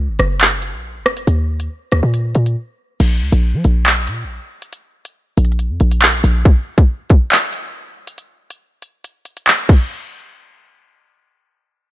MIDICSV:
0, 0, Header, 1, 3, 480
1, 0, Start_track
1, 0, Tempo, 431655
1, 1417, Time_signature, 4, 2, 24, 8
1, 13245, End_track
2, 0, Start_track
2, 0, Title_t, "808-style bass"
2, 0, Program_c, 0, 38
2, 0, Note_on_c, 0, 37, 111
2, 96, Note_on_c, 0, 32, 98
2, 113, Note_off_c, 0, 37, 0
2, 211, Note_off_c, 0, 32, 0
2, 216, Note_on_c, 0, 30, 109
2, 816, Note_on_c, 0, 34, 98
2, 833, Note_off_c, 0, 30, 0
2, 1116, Note_on_c, 0, 30, 102
2, 1133, Note_off_c, 0, 34, 0
2, 1401, Note_off_c, 0, 30, 0
2, 1416, Note_on_c, 0, 39, 110
2, 1877, Note_off_c, 0, 39, 0
2, 2136, Note_on_c, 0, 39, 110
2, 2252, Note_off_c, 0, 39, 0
2, 2256, Note_on_c, 0, 46, 101
2, 2602, Note_off_c, 0, 46, 0
2, 2616, Note_on_c, 0, 46, 102
2, 2847, Note_off_c, 0, 46, 0
2, 3337, Note_on_c, 0, 34, 104
2, 3576, Note_on_c, 0, 37, 98
2, 3593, Note_off_c, 0, 34, 0
2, 3691, Note_off_c, 0, 37, 0
2, 3696, Note_on_c, 0, 34, 109
2, 3936, Note_on_c, 0, 53, 96
2, 3953, Note_off_c, 0, 34, 0
2, 4050, Note_off_c, 0, 53, 0
2, 4056, Note_on_c, 0, 34, 108
2, 4537, Note_on_c, 0, 46, 100
2, 4553, Note_off_c, 0, 34, 0
2, 4717, Note_on_c, 0, 34, 99
2, 4733, Note_off_c, 0, 46, 0
2, 4888, Note_off_c, 0, 34, 0
2, 5977, Note_on_c, 0, 34, 102
2, 6337, Note_on_c, 0, 41, 97
2, 6353, Note_off_c, 0, 34, 0
2, 6451, Note_off_c, 0, 41, 0
2, 6456, Note_on_c, 0, 34, 98
2, 6917, Note_off_c, 0, 34, 0
2, 6937, Note_on_c, 0, 34, 105
2, 7167, Note_off_c, 0, 34, 0
2, 13245, End_track
3, 0, Start_track
3, 0, Title_t, "Drums"
3, 212, Note_on_c, 9, 42, 68
3, 217, Note_on_c, 9, 37, 91
3, 323, Note_off_c, 9, 42, 0
3, 328, Note_off_c, 9, 37, 0
3, 457, Note_on_c, 9, 39, 116
3, 457, Note_on_c, 9, 42, 83
3, 568, Note_off_c, 9, 39, 0
3, 568, Note_off_c, 9, 42, 0
3, 690, Note_on_c, 9, 42, 80
3, 802, Note_off_c, 9, 42, 0
3, 1177, Note_on_c, 9, 37, 101
3, 1288, Note_off_c, 9, 37, 0
3, 1299, Note_on_c, 9, 42, 92
3, 1410, Note_off_c, 9, 42, 0
3, 1417, Note_on_c, 9, 42, 85
3, 1528, Note_off_c, 9, 42, 0
3, 1777, Note_on_c, 9, 42, 89
3, 1889, Note_off_c, 9, 42, 0
3, 2131, Note_on_c, 9, 42, 69
3, 2137, Note_on_c, 9, 37, 91
3, 2243, Note_off_c, 9, 42, 0
3, 2248, Note_off_c, 9, 37, 0
3, 2377, Note_on_c, 9, 42, 84
3, 2488, Note_off_c, 9, 42, 0
3, 2611, Note_on_c, 9, 42, 76
3, 2722, Note_off_c, 9, 42, 0
3, 2738, Note_on_c, 9, 42, 73
3, 2849, Note_off_c, 9, 42, 0
3, 3337, Note_on_c, 9, 42, 83
3, 3337, Note_on_c, 9, 49, 97
3, 3448, Note_off_c, 9, 42, 0
3, 3448, Note_off_c, 9, 49, 0
3, 3698, Note_on_c, 9, 42, 83
3, 3809, Note_off_c, 9, 42, 0
3, 4052, Note_on_c, 9, 42, 64
3, 4163, Note_off_c, 9, 42, 0
3, 4297, Note_on_c, 9, 39, 114
3, 4297, Note_on_c, 9, 42, 81
3, 4408, Note_off_c, 9, 39, 0
3, 4408, Note_off_c, 9, 42, 0
3, 4530, Note_on_c, 9, 42, 74
3, 4641, Note_off_c, 9, 42, 0
3, 5139, Note_on_c, 9, 42, 86
3, 5250, Note_off_c, 9, 42, 0
3, 5256, Note_on_c, 9, 42, 84
3, 5368, Note_off_c, 9, 42, 0
3, 5617, Note_on_c, 9, 42, 85
3, 5729, Note_off_c, 9, 42, 0
3, 5977, Note_on_c, 9, 42, 66
3, 6057, Note_off_c, 9, 42, 0
3, 6057, Note_on_c, 9, 42, 52
3, 6137, Note_off_c, 9, 42, 0
3, 6137, Note_on_c, 9, 42, 40
3, 6217, Note_off_c, 9, 42, 0
3, 6217, Note_on_c, 9, 42, 78
3, 6328, Note_off_c, 9, 42, 0
3, 6450, Note_on_c, 9, 42, 71
3, 6561, Note_off_c, 9, 42, 0
3, 6577, Note_on_c, 9, 42, 69
3, 6689, Note_off_c, 9, 42, 0
3, 6696, Note_on_c, 9, 39, 122
3, 6807, Note_off_c, 9, 39, 0
3, 6818, Note_on_c, 9, 42, 69
3, 6929, Note_off_c, 9, 42, 0
3, 6941, Note_on_c, 9, 42, 80
3, 7052, Note_off_c, 9, 42, 0
3, 7176, Note_on_c, 9, 36, 120
3, 7176, Note_on_c, 9, 42, 81
3, 7288, Note_off_c, 9, 36, 0
3, 7288, Note_off_c, 9, 42, 0
3, 7537, Note_on_c, 9, 36, 90
3, 7537, Note_on_c, 9, 42, 87
3, 7648, Note_off_c, 9, 36, 0
3, 7648, Note_off_c, 9, 42, 0
3, 7891, Note_on_c, 9, 42, 65
3, 7897, Note_on_c, 9, 36, 84
3, 8003, Note_off_c, 9, 42, 0
3, 8008, Note_off_c, 9, 36, 0
3, 8137, Note_on_c, 9, 39, 110
3, 8137, Note_on_c, 9, 42, 80
3, 8248, Note_off_c, 9, 39, 0
3, 8248, Note_off_c, 9, 42, 0
3, 8370, Note_on_c, 9, 42, 76
3, 8481, Note_off_c, 9, 42, 0
3, 8979, Note_on_c, 9, 42, 84
3, 9090, Note_off_c, 9, 42, 0
3, 9096, Note_on_c, 9, 42, 82
3, 9208, Note_off_c, 9, 42, 0
3, 9457, Note_on_c, 9, 42, 85
3, 9569, Note_off_c, 9, 42, 0
3, 9812, Note_on_c, 9, 42, 67
3, 9923, Note_off_c, 9, 42, 0
3, 10057, Note_on_c, 9, 42, 78
3, 10168, Note_off_c, 9, 42, 0
3, 10290, Note_on_c, 9, 42, 71
3, 10401, Note_off_c, 9, 42, 0
3, 10417, Note_on_c, 9, 42, 70
3, 10529, Note_off_c, 9, 42, 0
3, 10536, Note_on_c, 9, 39, 119
3, 10647, Note_off_c, 9, 39, 0
3, 10658, Note_on_c, 9, 42, 72
3, 10769, Note_off_c, 9, 42, 0
3, 10777, Note_on_c, 9, 36, 108
3, 10777, Note_on_c, 9, 49, 84
3, 10888, Note_off_c, 9, 36, 0
3, 10888, Note_off_c, 9, 49, 0
3, 13245, End_track
0, 0, End_of_file